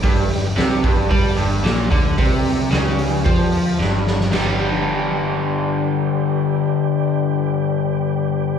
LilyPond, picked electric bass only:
\new Staff \with { instrumentName = "Picked electric bass" } { \clef bass \time 4/4 \key g \mixolydian \tempo 4 = 112 g,,8 g,,8 c,8 g,,8 g,8 g,,8 bes,,8 d,8 | c,4 cis,4 f,4 g,,4 | g,,1~ | g,,1 | }